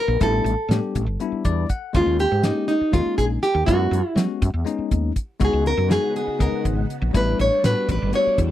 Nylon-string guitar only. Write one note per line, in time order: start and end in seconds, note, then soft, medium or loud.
0.00 0.22 A#4 medium
0.23 0.74 A4 medium
1.97 2.20 F4 medium
2.20 2.43 G4 medium
2.45 2.67 D#4 medium
2.68 2.94 D#4 medium
2.93 3.17 F4 medium
3.18 3.25 G#4 medium
3.43 3.66 G4 medium
3.66 4.07 F#4 medium
4.07 4.19 E4 medium
5.45 5.67 G#4 medium
5.67 5.91 A#4 medium
5.92 6.15 G#4 medium
6.16 6.41 G#4 medium
6.42 6.64 A#4 medium
7.17 7.39 B4 medium
7.41 7.65 C#5 medium
7.66 7.88 B4 medium
7.92 8.15 B4 medium
8.15 8.38 C#5 medium